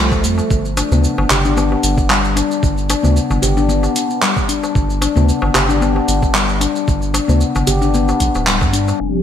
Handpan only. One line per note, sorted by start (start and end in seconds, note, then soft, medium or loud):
0.00 0.11 A3 medium
0.24 0.38 A3 medium
0.77 0.86 D4 medium
0.92 1.04 B3 medium
1.31 1.44 G4 medium
1.45 1.56 D4 medium
1.57 1.71 B3 medium
2.10 2.18 G3 medium
2.36 2.88 D4 medium
2.90 2.98 D4 medium
3.03 3.15 B3 medium
3.42 3.56 G4 medium
3.57 3.68 D4 medium
3.69 3.83 B3 medium
4.22 4.31 G3 medium
4.49 5.01 D4 medium
5.02 5.10 D4 medium
5.16 5.28 B3 medium
5.54 5.68 G4 medium
5.69 5.80 D4 medium
5.81 5.95 B3 medium
6.34 6.43 G3 medium
6.61 7.13 D4 medium
7.14 7.22 D4 medium
7.28 7.40 B3 medium
7.67 7.81 G4 medium
7.82 7.93 D4 medium
7.94 8.08 B3 medium
8.47 8.55 G3 medium
8.73 9.00 D4 medium